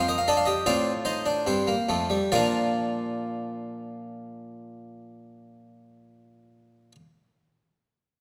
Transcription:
0.00 0.64 F2 medium
0.00 0.13 C4 medium
0.08 0.27 A#4 medium
0.08 0.18 D#5 medium
0.18 0.27 F5 medium
0.28 0.52 D4 medium
0.28 0.46 A4 medium
0.28 0.37 D#5 medium
0.37 0.46 F5 medium
0.46 0.65 G4 medium
0.46 0.65 D#5 medium
0.66 1.44 A2 medium
0.66 0.91 C4 medium
0.66 2.29 F4 medium
0.66 0.91 D5 medium
1.05 1.25 D#4 medium
1.05 2.29 C5 medium
1.26 1.45 D4 medium
1.46 1.73 G2 medium
1.46 1.67 C4 medium
1.67 1.88 A#3 medium
1.89 2.16 F2 medium
1.89 2.10 A3 medium
2.10 2.32 G3 medium
2.32 6.92 A#2 medium
2.32 6.92 F3 medium
2.32 6.95 A#3 medium
2.32 6.95 D4 medium
2.32 6.92 F4 medium
2.32 6.92 D5 medium

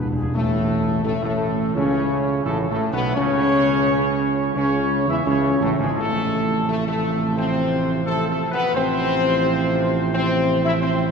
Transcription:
0.00 0.14 B3 medium
0.05 0.11 E2 loud
0.12 0.20 E2 loud
0.12 0.24 G#3 medium
0.17 0.33 G#4 medium
0.22 0.29 E2 loud
0.34 1.01 A1 medium
0.34 1.01 A2 medium
0.34 1.01 A3 loud
0.34 1.04 A4 medium
1.05 1.13 A1 medium
1.05 1.20 A2 medium
1.05 1.21 A3 loud
1.05 1.13 A4 medium
1.21 1.72 A1 medium
1.21 1.71 A2 medium
1.21 1.73 A3 medium
1.21 1.72 A4 medium
1.75 2.41 C#2 medium
1.75 2.42 C#3 medium
1.75 2.43 C#4 loud
1.75 2.46 C#5 medium
2.45 2.67 A1 medium
2.45 2.67 A2 medium
2.45 2.57 A3 medium
2.45 2.56 A4 medium
2.69 2.80 A1 medium
2.69 2.92 A2 medium
2.69 2.92 A3 medium
2.69 2.79 A4 medium
2.92 3.18 B1 medium
2.92 3.05 B2 medium
2.92 3.15 B3 loud
2.92 3.14 B4 medium
3.14 4.55 C#2 loud
3.14 4.52 C#3 loud
3.14 4.51 C#4 loud
3.14 4.50 C#5 loud
4.54 5.09 C#2 medium
4.54 5.04 C#3 medium
4.54 5.05 C#4 loud
4.54 5.04 C#5 loud
5.07 5.25 E2 medium
5.07 5.26 E3 medium
5.07 5.16 E4 loud
5.07 5.26 E5 medium
5.26 5.58 C#2 loud
5.26 5.59 C#3 medium
5.26 5.58 C#4 medium
5.26 5.59 C#5 medium
5.60 5.77 A1 medium
5.60 5.78 A2 medium
5.60 5.69 A3 loud
5.60 5.70 A4 medium
5.78 5.95 G#1 medium
5.78 5.86 G#2 medium
5.78 5.95 G#4 medium
5.83 5.97 G#3 medium
5.96 8.56 A1 medium
5.96 6.97 A2 loud
5.96 8.70 C3 medium
5.96 8.70 F3 medium
5.96 6.64 A3 loud
5.96 6.63 A4 loud
6.68 6.84 A3 loud
6.68 6.75 A4 medium
6.85 7.33 A3 loud
6.85 7.32 A4 medium
7.36 8.01 C4 loud
7.36 8.00 C5 medium
8.05 8.27 A3 medium
8.05 8.26 A4 loud
8.28 8.51 A3 loud
8.28 8.49 A4 medium
8.51 8.73 B3 loud
8.51 8.72 B4 loud
8.72 11.11 A1 medium
8.72 11.11 C3 medium
8.72 11.11 F3 medium
8.72 10.08 C5 loud
8.77 10.10 C4 loud
10.13 10.61 C4 loud
10.13 10.61 C5 loud
10.64 10.72 E4 loud
10.64 10.81 E5 medium
10.81 11.11 C4 loud
10.81 11.11 C5 medium

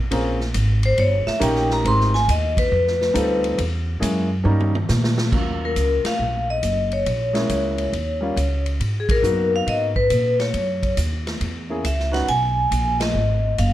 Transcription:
0.11 0.53 A#1 medium
0.11 0.37 C4 medium
0.11 0.37 C#4 medium
0.11 0.37 F4 medium
0.11 0.38 G#4 medium
0.11 0.38 A#4 medium
0.11 kick soft
0.11 ride medium
0.40 snare soft
0.54 0.96 G#1 medium
0.54 kick soft
0.54 hi-hat pedal medium
0.54 ride medium
0.83 0.99 C5 medium
0.83 ride medium
0.98 1.25 G1 medium
0.98 1.27 C#5 medium
0.98 kick soft
0.98 ride medium
1.27 1.41 E5 medium
1.27 muted upright bass stroke soft
1.27 snare medium
1.40 1.83 A#1 medium
1.40 1.84 A#3 medium
1.40 1.84 C#4 medium
1.40 1.84 D#4 medium
1.40 1.84 G4 medium
1.40 1.84 A#4 medium
1.40 1.70 G5 medium
1.40 kick soft
1.40 hi-hat pedal medium
1.40 ride medium
1.55 snare soft
1.70 1.86 A#5 loud
1.70 snare soft
1.84 2.27 G#1 medium
1.84 2.11 G#3 medium
1.84 2.11 C4 medium
1.84 2.11 D#4 medium
1.84 2.12 G4 medium
1.84 2.12 A#4 medium
1.84 2.14 C6 loud
1.84 kick soft
1.84 ride medium
2.00 snare soft
2.14 2.28 G#5 medium
2.14 snare soft
2.28 2.70 D#2 medium
2.28 2.57 D#5 medium
2.28 kick soft
2.28 hi-hat pedal medium
2.28 ride medium
2.57 3.55 B4 medium
2.57 kick medium
2.57 ride medium
2.72 3.14 F2 medium
2.72 kick soft
2.87 snare soft
3.01 snare soft
3.13 3.57 D2 medium
3.13 3.58 G3 medium
3.13 3.58 C4 medium
3.13 3.58 D#4 medium
3.13 3.58 F4 medium
3.13 3.58 A4 medium
3.13 kick soft
3.13 hi-hat pedal medium
3.13 ride medium
3.44 ride soft
3.58 4.00 E2 medium
3.58 kick soft
3.58 ride medium
4.00 4.44 F#2 loud
4.00 4.27 G#3 medium
4.00 4.27 A#3 medium
4.00 4.27 C#4 medium
4.00 4.27 E4 medium
4.00 4.27 G#4 medium
4.00 kick soft
4.00 hi-hat pedal medium
4.00 ride medium
4.44 4.87 G2 medium
4.44 4.70 G3 medium
4.44 4.71 A#3 medium
4.44 4.71 C#4 medium
4.44 4.71 D#4 medium
4.44 4.71 A#4 medium
4.60 high tom medium
4.75 high tom medium
4.89 5.31 A#2 medium
4.89 snare medium
4.89 hi-hat pedal medium
5.04 snare medium
5.18 snare medium
5.32 5.74 D#2 medium
5.32 6.54 F#3 medium
5.32 6.55 A#3 soft
5.32 6.55 C#4 soft
5.32 6.55 F4 medium
5.32 kick medium
5.32 crash medium
5.65 6.04 A#4 medium
5.76 6.03 C#2 medium
5.76 kick soft
5.76 hi-hat pedal medium
5.76 ride medium
6.04 6.46 F5 medium
6.04 muted upright bass stroke soft
6.04 snare medium
6.04 ride medium
6.19 6.61 A#1 medium
6.50 6.94 D#5 medium
6.63 7.05 F#1 medium
6.63 kick soft
6.63 hi-hat pedal medium
6.63 ride medium
6.92 8.62 C#5 medium
6.92 ride soft
7.06 7.48 A#1 medium
7.06 kick soft
7.06 ride medium
7.33 7.89 G#3 medium
7.33 7.90 A#3 medium
7.33 7.90 C#4 medium
7.33 7.90 E4 medium
7.33 snare medium
7.33 ride soft
7.49 7.92 C#2 medium
7.49 kick soft
7.49 hi-hat pedal medium
7.49 ride medium
7.78 ride soft
7.92 8.35 D#2 medium
7.92 kick soft
7.92 ride medium
8.21 8.34 G3 medium
8.21 8.35 A#3 medium
8.21 8.35 C#4 medium
8.21 8.35 F4 medium
8.36 8.79 C#2 medium
8.36 kick soft
8.36 hi-hat pedal medium
8.36 ride medium
8.66 ride soft
8.80 9.22 G#2 medium
8.80 kick soft
8.80 ride medium
9.00 9.09 G#4 medium
9.09 9.51 A#4 medium
9.09 kick medium
9.09 ride medium
9.22 9.65 F#2 medium
9.22 9.90 A#3 medium
9.22 9.90 B3 medium
9.22 9.90 D#4 medium
9.22 9.90 F#4 medium
9.22 hi-hat pedal medium
9.56 9.62 F5 medium
9.67 10.09 G#2 medium
9.67 9.81 D#5 medium
9.67 kick soft
9.67 ride medium
9.96 10.36 B4 medium
9.96 kick soft
10.10 10.53 A#2 medium
10.10 kick soft
10.10 hi-hat pedal medium
10.10 ride medium
10.40 10.94 C#5 medium
10.40 snare soft
10.40 ride soft
10.54 10.96 F#2 medium
10.54 kick soft
10.54 ride medium
10.83 kick soft
10.83 ride soft
10.97 11.39 D#2 medium
10.97 kick soft
10.97 hi-hat pedal medium
10.97 ride medium
11.27 snare soft
11.27 ride soft
11.41 11.83 E2 medium
11.41 kick soft
11.41 ride medium
11.70 11.83 A#3 medium
11.70 11.83 C#4 medium
11.70 11.83 E4 medium
11.70 11.84 G#4 medium
11.84 12.26 C#2 medium
11.84 12.12 E5 medium
11.84 kick soft
11.84 hi-hat pedal medium
11.84 ride medium
12.00 snare soft
12.12 12.26 C#4 medium
12.12 12.26 D#4 soft
12.12 12.26 F#4 medium
12.12 12.26 B4 medium
12.12 12.28 F#5 medium
12.12 snare soft
12.12 ride soft
12.28 12.70 B1 medium
12.28 12.97 G#5 loud
12.28 kick soft
12.28 ride medium
12.71 13.13 A#1 medium
12.71 kick soft
12.71 hi-hat pedal medium
12.71 ride medium
13.00 13.54 D#5 medium
13.00 snare medium
13.00 ride medium
13.14 13.57 G#1 medium
13.58 13.73 F#1 medium
13.58 13.73 F5 medium
13.58 kick soft
13.58 hi-hat pedal medium
13.58 ride medium

